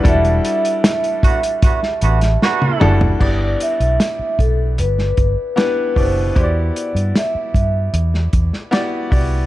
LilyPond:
<<
  \new Staff \with { instrumentName = "Vibraphone" } { \time 4/4 \key e \minor \tempo 4 = 76 e''2. r4 | d''8 e''4 a'8 b'4 b'8 c''8 | d''4 e''4 r2 | }
  \new Staff \with { instrumentName = "Grand piano" } { \time 4/4 \key e \minor <g d' e' fis' a'>4. r2 <g d' e' fis' a'>8 | <b d' e' g' d''>4. r4. <b d' e' g' b'>8 <b, d' e' g' d''>8 | <b e' fis' g' c'' d''>4. r4. <b e' fis' g' d''>8 <b e' fis' g' d''>8 | }
  \new Staff \with { instrumentName = "Horn section" } { \time 4/4 \key e \minor r4. <d b fis'>16 r16 <d b fis'>16 r16 <d b fis'>16 r16 <d b fis'>8. r16 | r1 | r1 | }
  \new Staff \with { instrumentName = "Fingered electric bass" } { \clef bass \time 4/4 \key e \minor e,,8 r2 a,,8 r8 fis,,8 | g,,8 r16 b,,16 r8 b,,8 g,,8 g,,16 r8. fis,,8 | e,8 r16 g,16 r8 g,8 e,8 e,16 r8. c,8 | }
  \new DrumStaff \with { instrumentName = "Drums" } \drummode { \time 4/4 <hh bd>16 hh16 hh16 hh16 <hh sn>16 hh16 <hh bd>16 hh16 <hh bd>16 sn16 hh16 <hh sn>16 sn16 tommh16 toml16 tomfh16 | <cymc bd>8 hh16 hh16 <hh sn>8 <hh bd>8 hh16 sn16 <hh bd>8 <hh sn>8 <hho bd>8 | <hh bd>8 hh16 hh16 <hh sn>8 <hh bd>8 hh16 sn16 <hh bd>16 sn16 <hh sn>8 <hho bd>8 | }
>>